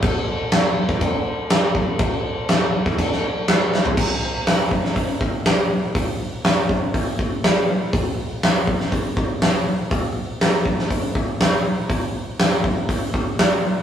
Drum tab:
CC |x---x---x---x---|x---x---x---x---|x---------------|----------------|
HH |----------------|----------------|----o---o---o---|o---o---o---o---|
SD |----o-------o---|----o----o--o-o-|----o--o----o---|----o-------o---|
FT |----------------|---------------o|----------------|----------------|
BD |o------oo-----o-|o------oo-------|o-----o-o-o-----|o-----o-o-o-----|

CC |----------------|----------------|----------------|
HH |o---o---o---o---|o---o---o---o---|o---o---o---o---|
SD |----o--o----o---|----oo-o----o---|----o-------o---|
FT |----------------|----------------|----------------|
BD |o-----o-o-o-----|o-----o-o-o-----|o-----o-o-o-----|